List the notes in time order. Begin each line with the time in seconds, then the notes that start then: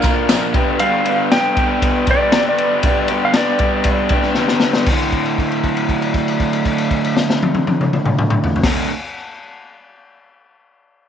Already playing: F5
0.02 D4 F4 A#4, kick, ride, tambourine
0.06 A#3
0.28 A#2 F3 A#3 D4 F4 A#4, snare, ride, tambourine
0.54 D3 G3 B3 D4 G4, kick, ride
0.58 G2
0.79 G2 D3 G3 B3 D4 G4 F5, ride
1.05 G3 B3 D4 G4, ride
1.32 G3 B3 D4 G4 G5, snare, ride
1.56 G3 B3 D4 G4, kick, ride
1.82 kick, ride
2.07 B3 D4 G4 D5, kick, ride
2.11 G3
2.22 D5
2.32 G2 D3 G3 B3 D4 G4, snare, ride
2.49 D5
2.58 ride
2.83 G2 D3 G3 B3, kick, ride
2.87 D4 G4
3.08 G3 B3 D4 G4, ride
3.25 F5
3.34 G3 B3 D4 G4 D5, snare, ride
3.59 B3 D4 G4, kick, ride
3.63 G3
3.84 kick, ride
4.09 D4 G4, kick, ride
4.13 G3 B3
4.22 snare
4.35 G2 D3 G3, snare
4.39 B3 D4 G4
4.48 snare
4.60 snare
4.73 snare
4.86 D2 A2, kick, crash
4.91 D3
5.12 kick, crash
5.26 crash
5.38 kick, crash
5.52 crash
5.64 kick, crash
5.77 crash
5.89 kick, crash
6.02 crash
6.14 kick, crash
6.28 crash
6.40 kick, crash
6.53 crash
6.65 kick, crash
6.78 crash
6.91 kick, crash
7.04 crash
7.17 snare
7.30 snare
7.43 high tom
7.54 high tom
7.67 high tom
7.81 mid tom
7.93 mid tom
8.05 mid tom
8.19 mid tom
8.30 mid tom
8.44 floor tom
8.56 floor tom
8.63 D2 A2, kick, snare, crash
8.67 D3